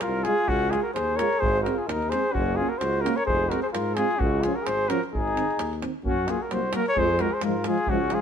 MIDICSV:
0, 0, Header, 1, 7, 480
1, 0, Start_track
1, 0, Tempo, 462250
1, 512, Time_signature, 2, 2, 24, 8
1, 8529, End_track
2, 0, Start_track
2, 0, Title_t, "Cornet"
2, 0, Program_c, 0, 56
2, 12, Note_on_c, 0, 70, 96
2, 244, Note_on_c, 0, 68, 109
2, 259, Note_off_c, 0, 70, 0
2, 501, Note_on_c, 0, 66, 113
2, 516, Note_off_c, 0, 68, 0
2, 731, Note_on_c, 0, 68, 87
2, 747, Note_off_c, 0, 66, 0
2, 848, Note_off_c, 0, 68, 0
2, 854, Note_on_c, 0, 70, 78
2, 969, Note_off_c, 0, 70, 0
2, 974, Note_on_c, 0, 72, 89
2, 1207, Note_on_c, 0, 73, 102
2, 1222, Note_off_c, 0, 72, 0
2, 1456, Note_on_c, 0, 72, 110
2, 1471, Note_off_c, 0, 73, 0
2, 1683, Note_off_c, 0, 72, 0
2, 1689, Note_on_c, 0, 70, 76
2, 1851, Note_on_c, 0, 68, 72
2, 1867, Note_off_c, 0, 70, 0
2, 1943, Note_on_c, 0, 70, 85
2, 1959, Note_off_c, 0, 68, 0
2, 2175, Note_on_c, 0, 72, 92
2, 2191, Note_off_c, 0, 70, 0
2, 2418, Note_on_c, 0, 66, 91
2, 2434, Note_off_c, 0, 72, 0
2, 2660, Note_on_c, 0, 68, 89
2, 2676, Note_off_c, 0, 66, 0
2, 2795, Note_on_c, 0, 70, 74
2, 2810, Note_off_c, 0, 68, 0
2, 2887, Note_on_c, 0, 72, 94
2, 2902, Note_off_c, 0, 70, 0
2, 3128, Note_on_c, 0, 70, 96
2, 3144, Note_off_c, 0, 72, 0
2, 3282, Note_on_c, 0, 73, 94
2, 3298, Note_off_c, 0, 70, 0
2, 3374, Note_off_c, 0, 73, 0
2, 3380, Note_on_c, 0, 72, 98
2, 3630, Note_on_c, 0, 70, 75
2, 3646, Note_off_c, 0, 72, 0
2, 3753, Note_off_c, 0, 70, 0
2, 3759, Note_on_c, 0, 72, 81
2, 3812, Note_off_c, 0, 72, 0
2, 3867, Note_on_c, 0, 70, 82
2, 4102, Note_on_c, 0, 68, 98
2, 4118, Note_off_c, 0, 70, 0
2, 4354, Note_on_c, 0, 66, 84
2, 4370, Note_off_c, 0, 68, 0
2, 4604, Note_on_c, 0, 68, 74
2, 4620, Note_off_c, 0, 66, 0
2, 4731, Note_on_c, 0, 70, 84
2, 4747, Note_off_c, 0, 68, 0
2, 4842, Note_on_c, 0, 72, 97
2, 4857, Note_off_c, 0, 70, 0
2, 5088, Note_on_c, 0, 70, 101
2, 5104, Note_off_c, 0, 72, 0
2, 5220, Note_off_c, 0, 70, 0
2, 5332, Note_on_c, 0, 68, 91
2, 6004, Note_off_c, 0, 68, 0
2, 6279, Note_on_c, 0, 66, 90
2, 6543, Note_on_c, 0, 68, 76
2, 6559, Note_off_c, 0, 66, 0
2, 6668, Note_on_c, 0, 70, 62
2, 6684, Note_off_c, 0, 68, 0
2, 6772, Note_on_c, 0, 72, 87
2, 6788, Note_off_c, 0, 70, 0
2, 7004, Note_off_c, 0, 72, 0
2, 7017, Note_on_c, 0, 70, 96
2, 7132, Note_off_c, 0, 70, 0
2, 7147, Note_on_c, 0, 73, 104
2, 7255, Note_on_c, 0, 72, 104
2, 7270, Note_off_c, 0, 73, 0
2, 7488, Note_on_c, 0, 70, 90
2, 7504, Note_off_c, 0, 72, 0
2, 7614, Note_on_c, 0, 72, 80
2, 7629, Note_off_c, 0, 70, 0
2, 7717, Note_off_c, 0, 72, 0
2, 7728, Note_on_c, 0, 70, 80
2, 7975, Note_on_c, 0, 68, 96
2, 7991, Note_off_c, 0, 70, 0
2, 8198, Note_on_c, 0, 66, 102
2, 8213, Note_off_c, 0, 68, 0
2, 8457, Note_on_c, 0, 68, 82
2, 8472, Note_off_c, 0, 66, 0
2, 8529, Note_off_c, 0, 68, 0
2, 8529, End_track
3, 0, Start_track
3, 0, Title_t, "Flugelhorn"
3, 0, Program_c, 1, 56
3, 26, Note_on_c, 1, 65, 83
3, 270, Note_off_c, 1, 65, 0
3, 270, Note_on_c, 1, 65, 81
3, 503, Note_on_c, 1, 61, 90
3, 519, Note_off_c, 1, 65, 0
3, 742, Note_on_c, 1, 65, 77
3, 757, Note_off_c, 1, 61, 0
3, 863, Note_off_c, 1, 65, 0
3, 869, Note_on_c, 1, 66, 62
3, 972, Note_off_c, 1, 66, 0
3, 978, Note_on_c, 1, 68, 79
3, 1206, Note_on_c, 1, 70, 82
3, 1222, Note_off_c, 1, 68, 0
3, 1437, Note_on_c, 1, 68, 93
3, 1453, Note_off_c, 1, 70, 0
3, 1660, Note_off_c, 1, 68, 0
3, 1666, Note_on_c, 1, 66, 74
3, 1811, Note_on_c, 1, 65, 60
3, 1827, Note_off_c, 1, 66, 0
3, 1940, Note_on_c, 1, 63, 75
3, 1956, Note_off_c, 1, 65, 0
3, 2172, Note_on_c, 1, 68, 69
3, 2187, Note_off_c, 1, 63, 0
3, 2407, Note_on_c, 1, 61, 79
3, 2422, Note_off_c, 1, 68, 0
3, 2652, Note_on_c, 1, 65, 73
3, 2667, Note_off_c, 1, 61, 0
3, 2789, Note_on_c, 1, 66, 48
3, 2804, Note_off_c, 1, 65, 0
3, 2889, Note_off_c, 1, 66, 0
3, 2889, Note_on_c, 1, 66, 84
3, 3143, Note_off_c, 1, 66, 0
3, 3143, Note_on_c, 1, 66, 75
3, 3286, Note_on_c, 1, 70, 66
3, 3302, Note_off_c, 1, 66, 0
3, 3373, Note_off_c, 1, 70, 0
3, 3379, Note_on_c, 1, 68, 86
3, 3615, Note_on_c, 1, 66, 85
3, 3631, Note_off_c, 1, 68, 0
3, 3751, Note_off_c, 1, 66, 0
3, 3757, Note_on_c, 1, 68, 52
3, 3810, Note_off_c, 1, 68, 0
3, 3861, Note_on_c, 1, 65, 77
3, 4110, Note_off_c, 1, 65, 0
3, 4110, Note_on_c, 1, 65, 68
3, 4328, Note_on_c, 1, 61, 74
3, 4344, Note_off_c, 1, 65, 0
3, 4574, Note_on_c, 1, 65, 73
3, 4590, Note_off_c, 1, 61, 0
3, 4706, Note_on_c, 1, 66, 54
3, 4722, Note_off_c, 1, 65, 0
3, 4801, Note_on_c, 1, 68, 78
3, 4816, Note_off_c, 1, 66, 0
3, 5070, Note_on_c, 1, 66, 70
3, 5086, Note_off_c, 1, 68, 0
3, 5211, Note_off_c, 1, 66, 0
3, 5309, Note_on_c, 1, 63, 84
3, 5993, Note_off_c, 1, 63, 0
3, 6277, Note_on_c, 1, 61, 80
3, 6516, Note_on_c, 1, 65, 70
3, 6532, Note_off_c, 1, 61, 0
3, 6639, Note_on_c, 1, 66, 49
3, 6655, Note_off_c, 1, 65, 0
3, 6727, Note_off_c, 1, 66, 0
3, 6727, Note_on_c, 1, 66, 70
3, 6976, Note_off_c, 1, 66, 0
3, 6982, Note_on_c, 1, 66, 72
3, 7098, Note_off_c, 1, 66, 0
3, 7105, Note_on_c, 1, 70, 61
3, 7209, Note_on_c, 1, 68, 82
3, 7225, Note_off_c, 1, 70, 0
3, 7457, Note_on_c, 1, 66, 80
3, 7473, Note_off_c, 1, 68, 0
3, 7590, Note_on_c, 1, 68, 53
3, 7605, Note_off_c, 1, 66, 0
3, 7691, Note_off_c, 1, 68, 0
3, 7697, Note_on_c, 1, 65, 74
3, 7952, Note_off_c, 1, 65, 0
3, 7952, Note_on_c, 1, 65, 75
3, 8192, Note_on_c, 1, 61, 88
3, 8208, Note_off_c, 1, 65, 0
3, 8435, Note_on_c, 1, 65, 82
3, 8451, Note_off_c, 1, 61, 0
3, 8529, Note_off_c, 1, 65, 0
3, 8529, End_track
4, 0, Start_track
4, 0, Title_t, "Euphonium"
4, 0, Program_c, 2, 58
4, 262, Note_on_c, 2, 65, 72
4, 360, Note_off_c, 2, 65, 0
4, 748, Note_on_c, 2, 65, 56
4, 845, Note_off_c, 2, 65, 0
4, 1227, Note_on_c, 2, 65, 66
4, 1326, Note_off_c, 2, 65, 0
4, 1716, Note_on_c, 2, 60, 68
4, 1813, Note_off_c, 2, 60, 0
4, 2214, Note_on_c, 2, 60, 62
4, 2308, Note_off_c, 2, 60, 0
4, 2692, Note_on_c, 2, 61, 55
4, 2787, Note_off_c, 2, 61, 0
4, 3155, Note_on_c, 2, 61, 59
4, 3253, Note_off_c, 2, 61, 0
4, 3644, Note_on_c, 2, 60, 64
4, 3741, Note_off_c, 2, 60, 0
4, 4122, Note_on_c, 2, 60, 63
4, 4219, Note_off_c, 2, 60, 0
4, 4619, Note_on_c, 2, 61, 68
4, 4712, Note_off_c, 2, 61, 0
4, 5080, Note_on_c, 2, 61, 73
4, 5176, Note_off_c, 2, 61, 0
4, 5557, Note_on_c, 2, 60, 57
4, 5654, Note_off_c, 2, 60, 0
4, 6042, Note_on_c, 2, 60, 55
4, 6138, Note_off_c, 2, 60, 0
4, 6277, Note_on_c, 2, 58, 57
4, 6374, Note_off_c, 2, 58, 0
4, 6524, Note_on_c, 2, 58, 66
4, 6618, Note_off_c, 2, 58, 0
4, 6768, Note_on_c, 2, 58, 64
4, 6862, Note_off_c, 2, 58, 0
4, 7006, Note_on_c, 2, 58, 77
4, 7100, Note_off_c, 2, 58, 0
4, 7226, Note_on_c, 2, 56, 64
4, 7324, Note_off_c, 2, 56, 0
4, 7469, Note_on_c, 2, 56, 70
4, 7566, Note_off_c, 2, 56, 0
4, 7710, Note_on_c, 2, 56, 72
4, 7806, Note_off_c, 2, 56, 0
4, 7962, Note_on_c, 2, 56, 81
4, 8056, Note_off_c, 2, 56, 0
4, 8203, Note_on_c, 2, 56, 65
4, 8296, Note_off_c, 2, 56, 0
4, 8432, Note_on_c, 2, 56, 71
4, 8527, Note_off_c, 2, 56, 0
4, 8529, End_track
5, 0, Start_track
5, 0, Title_t, "Euphonium"
5, 0, Program_c, 3, 58
5, 272, Note_on_c, 3, 56, 81
5, 368, Note_off_c, 3, 56, 0
5, 756, Note_on_c, 3, 56, 63
5, 852, Note_off_c, 3, 56, 0
5, 1245, Note_on_c, 3, 56, 74
5, 1340, Note_off_c, 3, 56, 0
5, 1733, Note_on_c, 3, 56, 57
5, 1827, Note_off_c, 3, 56, 0
5, 2230, Note_on_c, 3, 56, 61
5, 2321, Note_off_c, 3, 56, 0
5, 2708, Note_on_c, 3, 58, 55
5, 2799, Note_off_c, 3, 58, 0
5, 3175, Note_on_c, 3, 58, 74
5, 3270, Note_off_c, 3, 58, 0
5, 3659, Note_on_c, 3, 56, 60
5, 3753, Note_off_c, 3, 56, 0
5, 4140, Note_on_c, 3, 56, 73
5, 4233, Note_off_c, 3, 56, 0
5, 4609, Note_on_c, 3, 53, 59
5, 4704, Note_off_c, 3, 53, 0
5, 5091, Note_on_c, 3, 53, 72
5, 5185, Note_off_c, 3, 53, 0
5, 5568, Note_on_c, 3, 51, 58
5, 5663, Note_off_c, 3, 51, 0
5, 6051, Note_on_c, 3, 51, 58
5, 6145, Note_off_c, 3, 51, 0
5, 6280, Note_on_c, 3, 54, 50
5, 6376, Note_off_c, 3, 54, 0
5, 6526, Note_on_c, 3, 54, 52
5, 6620, Note_off_c, 3, 54, 0
5, 6763, Note_on_c, 3, 54, 64
5, 6858, Note_off_c, 3, 54, 0
5, 7009, Note_on_c, 3, 54, 69
5, 7102, Note_off_c, 3, 54, 0
5, 7241, Note_on_c, 3, 53, 80
5, 7336, Note_off_c, 3, 53, 0
5, 7482, Note_on_c, 3, 53, 58
5, 7576, Note_off_c, 3, 53, 0
5, 7745, Note_on_c, 3, 53, 70
5, 7834, Note_off_c, 3, 53, 0
5, 7972, Note_on_c, 3, 53, 69
5, 8064, Note_off_c, 3, 53, 0
5, 8204, Note_on_c, 3, 53, 74
5, 8297, Note_off_c, 3, 53, 0
5, 8433, Note_on_c, 3, 53, 59
5, 8528, Note_off_c, 3, 53, 0
5, 8529, End_track
6, 0, Start_track
6, 0, Title_t, "Tuba"
6, 0, Program_c, 4, 58
6, 26, Note_on_c, 4, 36, 86
6, 293, Note_off_c, 4, 36, 0
6, 500, Note_on_c, 4, 37, 108
6, 769, Note_off_c, 4, 37, 0
6, 986, Note_on_c, 4, 39, 77
6, 1254, Note_off_c, 4, 39, 0
6, 1472, Note_on_c, 4, 32, 114
6, 1739, Note_off_c, 4, 32, 0
6, 1955, Note_on_c, 4, 39, 83
6, 2222, Note_off_c, 4, 39, 0
6, 2432, Note_on_c, 4, 30, 105
6, 2700, Note_off_c, 4, 30, 0
6, 2920, Note_on_c, 4, 37, 90
6, 3186, Note_off_c, 4, 37, 0
6, 3403, Note_on_c, 4, 29, 99
6, 3668, Note_off_c, 4, 29, 0
6, 3888, Note_on_c, 4, 44, 76
6, 4152, Note_off_c, 4, 44, 0
6, 4365, Note_on_c, 4, 37, 111
6, 4629, Note_off_c, 4, 37, 0
6, 4839, Note_on_c, 4, 32, 77
6, 5104, Note_off_c, 4, 32, 0
6, 5320, Note_on_c, 4, 32, 93
6, 5584, Note_off_c, 4, 32, 0
6, 5796, Note_on_c, 4, 39, 80
6, 6061, Note_off_c, 4, 39, 0
6, 6274, Note_on_c, 4, 42, 89
6, 6539, Note_off_c, 4, 42, 0
6, 6753, Note_on_c, 4, 36, 76
6, 7018, Note_off_c, 4, 36, 0
6, 7230, Note_on_c, 4, 41, 107
6, 7495, Note_off_c, 4, 41, 0
6, 7702, Note_on_c, 4, 44, 71
6, 7968, Note_off_c, 4, 44, 0
6, 8178, Note_on_c, 4, 37, 89
6, 8444, Note_off_c, 4, 37, 0
6, 8529, End_track
7, 0, Start_track
7, 0, Title_t, "Davul"
7, 8, Note_on_c, 9, 37, 75
7, 112, Note_off_c, 9, 37, 0
7, 257, Note_on_c, 9, 37, 61
7, 361, Note_off_c, 9, 37, 0
7, 394, Note_on_c, 9, 37, 25
7, 498, Note_off_c, 9, 37, 0
7, 500, Note_on_c, 9, 43, 76
7, 603, Note_off_c, 9, 43, 0
7, 756, Note_on_c, 9, 37, 59
7, 860, Note_off_c, 9, 37, 0
7, 996, Note_on_c, 9, 37, 74
7, 1100, Note_off_c, 9, 37, 0
7, 1237, Note_on_c, 9, 37, 78
7, 1341, Note_off_c, 9, 37, 0
7, 1376, Note_on_c, 9, 37, 27
7, 1480, Note_off_c, 9, 37, 0
7, 1482, Note_on_c, 9, 43, 94
7, 1586, Note_off_c, 9, 43, 0
7, 1618, Note_on_c, 9, 37, 27
7, 1721, Note_off_c, 9, 37, 0
7, 1727, Note_on_c, 9, 37, 58
7, 1831, Note_off_c, 9, 37, 0
7, 1966, Note_on_c, 9, 37, 75
7, 2070, Note_off_c, 9, 37, 0
7, 2100, Note_on_c, 9, 37, 27
7, 2202, Note_off_c, 9, 37, 0
7, 2202, Note_on_c, 9, 37, 62
7, 2305, Note_off_c, 9, 37, 0
7, 2440, Note_on_c, 9, 43, 79
7, 2544, Note_off_c, 9, 43, 0
7, 2920, Note_on_c, 9, 37, 68
7, 3023, Note_off_c, 9, 37, 0
7, 3179, Note_on_c, 9, 37, 67
7, 3282, Note_off_c, 9, 37, 0
7, 3299, Note_on_c, 9, 37, 27
7, 3400, Note_on_c, 9, 43, 80
7, 3403, Note_off_c, 9, 37, 0
7, 3504, Note_off_c, 9, 43, 0
7, 3650, Note_on_c, 9, 37, 58
7, 3754, Note_off_c, 9, 37, 0
7, 3890, Note_on_c, 9, 37, 73
7, 3993, Note_off_c, 9, 37, 0
7, 4119, Note_on_c, 9, 37, 73
7, 4223, Note_off_c, 9, 37, 0
7, 4266, Note_on_c, 9, 37, 33
7, 4365, Note_on_c, 9, 43, 96
7, 4370, Note_off_c, 9, 37, 0
7, 4469, Note_off_c, 9, 43, 0
7, 4605, Note_on_c, 9, 37, 64
7, 4709, Note_off_c, 9, 37, 0
7, 4845, Note_on_c, 9, 37, 79
7, 4948, Note_off_c, 9, 37, 0
7, 5086, Note_on_c, 9, 37, 74
7, 5190, Note_off_c, 9, 37, 0
7, 5228, Note_on_c, 9, 37, 25
7, 5331, Note_off_c, 9, 37, 0
7, 5348, Note_on_c, 9, 43, 78
7, 5452, Note_off_c, 9, 43, 0
7, 5478, Note_on_c, 9, 37, 22
7, 5579, Note_off_c, 9, 37, 0
7, 5579, Note_on_c, 9, 37, 57
7, 5683, Note_off_c, 9, 37, 0
7, 5716, Note_on_c, 9, 37, 27
7, 5807, Note_off_c, 9, 37, 0
7, 5807, Note_on_c, 9, 37, 74
7, 5911, Note_off_c, 9, 37, 0
7, 5950, Note_on_c, 9, 37, 26
7, 6048, Note_off_c, 9, 37, 0
7, 6048, Note_on_c, 9, 37, 65
7, 6152, Note_off_c, 9, 37, 0
7, 6286, Note_on_c, 9, 43, 76
7, 6390, Note_off_c, 9, 43, 0
7, 6520, Note_on_c, 9, 37, 64
7, 6624, Note_off_c, 9, 37, 0
7, 6761, Note_on_c, 9, 37, 64
7, 6865, Note_off_c, 9, 37, 0
7, 6985, Note_on_c, 9, 37, 80
7, 7089, Note_off_c, 9, 37, 0
7, 7122, Note_on_c, 9, 37, 28
7, 7226, Note_off_c, 9, 37, 0
7, 7233, Note_on_c, 9, 43, 67
7, 7337, Note_off_c, 9, 43, 0
7, 7465, Note_on_c, 9, 37, 60
7, 7569, Note_off_c, 9, 37, 0
7, 7700, Note_on_c, 9, 37, 76
7, 7803, Note_off_c, 9, 37, 0
7, 7936, Note_on_c, 9, 37, 69
7, 8040, Note_off_c, 9, 37, 0
7, 8075, Note_on_c, 9, 37, 27
7, 8171, Note_on_c, 9, 43, 79
7, 8179, Note_off_c, 9, 37, 0
7, 8275, Note_off_c, 9, 43, 0
7, 8413, Note_on_c, 9, 37, 66
7, 8517, Note_off_c, 9, 37, 0
7, 8529, End_track
0, 0, End_of_file